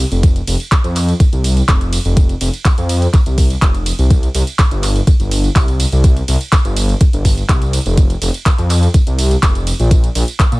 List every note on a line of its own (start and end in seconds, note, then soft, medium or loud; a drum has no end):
0.11 0.41 F1 medium
0.11 closed hi-hat soft
0.11 tambourine soft
0.23 kick loud
0.23 closed hi-hat medium
0.23 ride medium
0.23 tambourine soft
0.36 closed hi-hat soft
0.36 tambourine soft
0.47 0.56 F1 loud
0.47 open hi-hat loud
0.47 ride medium
0.47 tambourine medium
0.60 closed hi-hat soft
0.60 tambourine soft
0.72 kick loud
0.72 clap loud
0.72 closed hi-hat medium
0.72 ride medium
0.72 tambourine soft
0.84 1.14 F2 medium
0.84 closed hi-hat soft
0.84 tambourine soft
0.96 clap soft
0.96 open hi-hat loud
0.96 ride medium
0.96 tambourine medium
1.09 closed hi-hat soft
1.09 tambourine soft
1.20 kick loud
1.20 closed hi-hat medium
1.20 ride medium
1.20 tambourine soft
1.32 1.62 C2 loud
1.32 closed hi-hat soft
1.32 tambourine soft
1.44 open hi-hat loud
1.44 ride medium
1.44 tambourine medium
1.57 closed hi-hat soft
1.57 tambourine soft
1.68 1.98 F1 medium
1.68 kick loud
1.68 clap loud
1.68 closed hi-hat medium
1.68 ride medium
1.68 tambourine soft
1.81 closed hi-hat soft
1.81 tambourine soft
1.93 open hi-hat loud
1.93 ride medium
1.93 tambourine medium
2.05 2.35 F1 medium
2.05 closed hi-hat soft
2.05 tambourine soft
2.17 kick loud
2.17 closed hi-hat medium
2.17 ride medium
2.17 tambourine soft
2.29 closed hi-hat soft
2.29 tambourine soft
2.41 2.49 F1 loud
2.41 open hi-hat loud
2.41 ride medium
2.41 tambourine medium
2.54 closed hi-hat soft
2.54 tambourine soft
2.65 kick loud
2.65 clap loud
2.65 closed hi-hat medium
2.65 ride medium
2.65 tambourine soft
2.78 3.07 F2 medium
2.78 closed hi-hat soft
2.78 tambourine soft
2.89 open hi-hat loud
2.89 ride medium
2.89 tambourine medium
3.02 closed hi-hat soft
3.02 tambourine soft
3.14 kick loud
3.14 clap soft
3.14 closed hi-hat medium
3.14 ride medium
3.14 tambourine soft
3.26 3.56 C2 loud
3.26 closed hi-hat soft
3.26 tambourine soft
3.38 kick medium
3.38 open hi-hat loud
3.38 ride medium
3.38 tambourine medium
3.50 closed hi-hat soft
3.50 tambourine soft
3.62 3.92 F1 medium
3.62 kick loud
3.62 clap loud
3.62 closed hi-hat medium
3.62 ride medium
3.62 tambourine soft
3.75 closed hi-hat soft
3.75 tambourine soft
3.86 open hi-hat loud
3.86 ride medium
3.86 tambourine medium
3.99 4.28 C2 medium
3.99 closed hi-hat soft
3.99 tambourine soft
4.10 kick loud
4.10 closed hi-hat medium
4.10 ride medium
4.10 tambourine soft
4.23 closed hi-hat soft
4.23 tambourine soft
4.35 4.43 C2 loud
4.35 open hi-hat loud
4.35 ride medium
4.35 tambourine medium
4.47 closed hi-hat soft
4.47 tambourine soft
4.59 kick loud
4.59 clap loud
4.59 closed hi-hat medium
4.59 ride medium
4.59 tambourine soft
4.71 5.01 G1 medium
4.71 closed hi-hat soft
4.71 tambourine soft
4.83 clap soft
4.83 open hi-hat medium
4.83 ride medium
4.83 tambourine medium
4.96 closed hi-hat soft
4.96 tambourine soft
5.07 kick loud
5.07 closed hi-hat medium
5.07 ride medium
5.07 tambourine soft
5.20 5.49 G1 medium
5.20 closed hi-hat soft
5.20 tambourine soft
5.31 open hi-hat loud
5.31 ride medium
5.31 tambourine medium
5.44 closed hi-hat soft
5.44 tambourine soft
5.56 5.85 C2 medium
5.56 kick loud
5.56 clap loud
5.56 closed hi-hat medium
5.56 ride medium
5.56 tambourine soft
5.68 closed hi-hat soft
5.68 tambourine soft
5.80 open hi-hat medium
5.80 ride medium
5.80 tambourine medium
5.92 6.22 C2 medium
5.92 closed hi-hat soft
5.92 tambourine soft
6.04 kick loud
6.04 closed hi-hat loud
6.04 ride medium
6.04 tambourine soft
6.17 closed hi-hat soft
6.17 tambourine soft
6.28 6.36 C2 loud
6.28 open hi-hat loud
6.28 ride medium
6.28 tambourine medium
6.41 closed hi-hat soft
6.41 tambourine soft
6.52 kick loud
6.52 clap loud
6.52 closed hi-hat medium
6.52 ride medium
6.52 tambourine soft
6.65 6.94 G1 medium
6.65 closed hi-hat soft
6.65 tambourine soft
6.77 open hi-hat medium
6.77 ride medium
6.77 tambourine medium
6.89 closed hi-hat soft
6.89 tambourine soft
7.01 kick loud
7.01 closed hi-hat medium
7.01 ride medium
7.01 tambourine soft
7.13 7.43 G1 loud
7.13 closed hi-hat soft
7.13 tambourine soft
7.25 kick medium
7.25 open hi-hat loud
7.25 ride medium
7.25 tambourine medium
7.38 closed hi-hat soft
7.38 tambourine soft
7.49 7.79 C2 medium
7.49 kick loud
7.49 clap loud
7.49 closed hi-hat medium
7.49 ride medium
7.49 tambourine soft
7.62 closed hi-hat soft
7.62 tambourine soft
7.73 open hi-hat medium
7.73 ride medium
7.73 tambourine medium
7.86 8.15 F1 medium
7.86 closed hi-hat soft
7.86 tambourine soft
7.97 kick loud
7.97 closed hi-hat loud
7.97 ride medium
7.97 tambourine soft
8.10 closed hi-hat soft
8.10 tambourine soft
8.22 8.30 F1 loud
8.22 open hi-hat loud
8.22 ride medium
8.22 tambourine medium
8.34 closed hi-hat soft
8.34 tambourine soft
8.46 kick loud
8.46 clap loud
8.46 closed hi-hat loud
8.46 ride medium
8.46 tambourine soft
8.58 8.88 F2 loud
8.58 closed hi-hat soft
8.58 tambourine soft
8.70 clap soft
8.70 open hi-hat medium
8.70 ride medium
8.70 tambourine medium
8.83 closed hi-hat soft
8.83 tambourine soft
8.94 kick loud
8.94 closed hi-hat loud
8.94 ride medium
8.94 tambourine soft
9.07 9.36 C2 loud
9.07 closed hi-hat soft
9.07 tambourine soft
9.19 open hi-hat loud
9.19 ride medium
9.19 tambourine medium
9.31 closed hi-hat soft
9.31 tambourine soft
9.43 9.73 F1 medium
9.43 kick loud
9.43 clap loud
9.43 closed hi-hat loud
9.43 ride medium
9.43 tambourine soft
9.55 closed hi-hat soft
9.55 tambourine soft
9.67 open hi-hat medium
9.67 ride medium
9.67 tambourine medium
9.79 10.09 A#1 medium
9.79 closed hi-hat soft
9.79 tambourine soft
9.91 kick loud
9.91 closed hi-hat loud
9.91 ride medium
9.91 tambourine soft
10.04 closed hi-hat soft
10.04 tambourine soft
10.15 10.23 A#1 loud
10.15 open hi-hat loud
10.15 ride medium
10.15 tambourine medium
10.28 closed hi-hat soft
10.28 tambourine soft
10.39 kick loud
10.39 clap loud
10.39 closed hi-hat loud
10.39 ride medium
10.39 tambourine soft
10.52 10.60 A#2 loud
10.52 closed hi-hat soft
10.52 tambourine soft